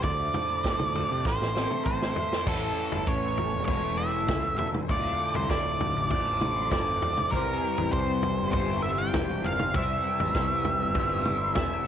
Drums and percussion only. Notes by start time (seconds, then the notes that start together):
0.03 kick, floor tom
0.34 floor tom, mid tom
0.64 kick, snare
0.79 mid tom
0.95 floor tom
1.25 kick, snare
1.42 snare
1.57 snare
1.71 mid tom
1.86 kick, mid tom
2.02 snare
2.16 floor tom
2.33 snare
2.47 kick, floor tom, crash
2.92 floor tom
3.07 kick
3.37 floor tom
3.67 kick, floor tom
4.29 kick, snare, floor tom, mid tom
4.59 floor tom
4.74 mid tom
4.89 kick, floor tom
5.35 floor tom
5.50 kick, snare
5.80 floor tom, mid tom
6.10 kick, floor tom
6.41 mid tom
6.71 kick, snare, floor tom, mid tom
7.02 floor tom
7.17 mid tom
7.32 kick, floor tom
7.78 floor tom
7.93 kick
8.23 floor tom
8.53 kick, floor tom
9.14 kick, snare, floor tom, mid tom
9.44 floor tom
9.59 mid tom
9.74 kick, floor tom
10.20 floor tom
10.35 kick, snare
10.65 floor tom, mid tom
10.95 kick, floor tom
11.25 mid tom
11.55 kick, snare, floor tom, mid tom